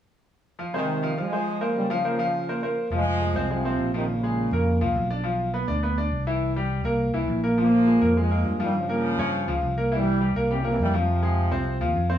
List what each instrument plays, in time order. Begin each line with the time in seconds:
0.59 grand piano F3 F4 F5
0.74 trombone section C3 D#3, grand piano G#3 G#4 C5
1.03 grand piano F3 F4 F5
1.18 grand piano F3 F4 F5, trombone section F3 G#3
1.32 grand piano G#3 G#4 C5
1.61 grand piano A#3 A#4 C5
1.75 trombone section C#3 G3
1.90 trombone section C#3 F3, grand piano F3 F4 F5
2.04 grand piano A#3 A#4 C5
2.19 grand piano F3 F4 F5
2.49 grand piano A#3 A#4 C5
2.63 grand piano A#3 A#4 C5
2.90 fingered electric bass F1, grand piano F3 F4, trombone section F3 G#3
3.22 grand piano G#3 G#4
3.34 fingered electric bass C2, grand piano C4 C5
3.50 trombone section C3 F3, grand piano G#3 G#4
3.65 grand piano C4 C5
3.79 fingered electric bass A#1
3.93 trombone section C3 D#3, grand piano F3 F4
4.08 trombone section A#2 C#3
4.23 grand piano G#3 G#4
4.51 fingered electric bass F2, grand piano A#3 A#4
4.81 fingered electric bass C2, grand piano F3 F4
4.96 fingered electric bass B1
5.11 grand piano D4 D5
5.24 grand piano F3 F4
5.54 grand piano B3 B4
5.68 fingered electric bass D2, grand piano D4 D5
5.83 grand piano B3 B4
5.98 grand piano D4 D5
6.11 fingered electric bass C2
6.27 grand piano E3 E4
6.56 grand piano G3 G4
6.84 fingered electric bass C2, grand piano A#3 A#4
7.13 fingered electric bass C2, grand piano E3 E4
7.28 fingered electric bass A#1
7.44 grand piano A#3 A#4
7.58 grand piano F3 F4, trombone section F3 A#3
7.87 grand piano G#3 G#4
8.01 fingered electric bass F2, grand piano A#3 A#4
8.17 trombone section F3 G#3, grand piano G#3 G#4
8.31 grand piano A#3 A#4
8.45 fingered electric bass G2
8.60 trombone section D#3 G3, grand piano F3 F4
8.77 trombone section C#3 F3
8.89 grand piano A#3 A#4
9.18 fingered electric bass G2, grand piano C#4 C#5
9.47 fingered electric bass C#2, grand piano F3 F4
9.62 fingered electric bass C2
9.78 grand piano A#3 A#4
9.92 grand piano E3 E4, trombone section E3 G3
10.21 grand piano G3 G4
10.35 fingered electric bass C2, grand piano A#3 A#4
10.51 trombone section C3 E3, grand piano G3 G4
10.60 trombone section C#3 F3, grand piano A#3
10.65 grand piano A#4
10.71 trombone section C3 E3
10.79 fingered electric bass F2, trombone section E3 G3
10.94 trombone section C3 F3, grand piano F3 F4
11.23 grand piano G#3 G#4
11.51 fingered electric bass C2, grand piano C4 C5
11.81 fingered electric bass D#2, grand piano F3 F4
11.96 fingered electric bass F2
12.10 grand piano C4 C5